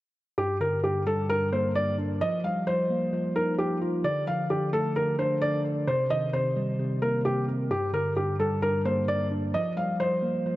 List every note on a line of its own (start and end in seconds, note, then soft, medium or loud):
0.38 0.82 G2 medium
0.38 0.56 G4 medium
0.61 1.75 D3 medium
0.61 0.79 A#4 medium
0.84 1.28 G2 medium
0.84 1.02 G4 medium
1.07 2.21 G3 medium
1.07 1.25 A4 medium
1.29 1.74 G2 medium
1.29 1.48 A#4 medium
1.52 2.21 A#3 medium
1.52 1.71 C5 medium
1.75 2.21 G2 medium
1.75 1.94 D5 medium
1.98 2.21 D4 medium
2.21 2.66 F3 loud
2.21 2.39 D#5 medium
2.44 3.59 G3 medium
2.44 2.62 F5 medium
2.67 3.12 F3 medium
2.67 3.32 C5 medium
2.90 4.04 A#3 medium
3.13 3.57 F3 medium
3.36 4.04 D#4 medium
3.36 3.54 A#4 medium
3.58 4.04 F3 medium
3.58 3.77 G4 medium
3.82 4.04 F4 medium
4.04 4.49 D3 medium
4.04 4.23 D5 medium
4.27 5.42 F3 medium
4.27 4.45 F5 medium
4.50 4.95 D3 medium
4.50 4.68 G4 medium
4.73 5.88 A3 medium
4.73 4.91 A4 medium
4.96 5.40 D3 medium
4.96 5.14 A#4 medium
5.19 5.88 D4 medium
5.19 5.37 C5 medium
5.42 5.88 D3 medium
5.42 5.60 D5 medium
5.65 5.88 D5 medium
5.87 6.32 C3 medium
5.87 6.06 C5 medium
6.10 7.25 D#3 medium
6.10 6.29 D#5 medium
6.33 6.78 C3 medium
6.33 6.98 C5 medium
6.56 7.71 G3 medium
6.79 7.24 C3 medium
7.02 7.71 A#3 medium
7.02 7.20 A#4 medium
7.25 7.71 C3 medium
7.25 7.43 G4 medium
7.48 7.71 C4 medium
7.71 8.15 G2 medium
7.71 7.89 G4 medium
7.93 9.08 D3 medium
7.93 8.12 A#4 medium
8.16 8.61 G2 medium
8.16 8.35 G4 medium
8.39 9.54 G3 medium
8.39 8.58 A4 medium
8.62 9.07 G2 medium
8.62 8.81 A#4 medium
8.85 9.54 A#3 medium
8.85 9.03 C5 medium
9.08 9.54 G2 medium
9.08 9.26 D5 medium
9.31 9.54 D4 medium
9.54 9.99 F3 loud
9.54 9.72 D#5 medium
9.77 10.56 G3 medium
9.77 9.95 F5 medium
10.00 10.44 F3 medium
10.00 10.56 C5 medium
10.23 10.56 A#3 medium
10.46 10.56 F3 medium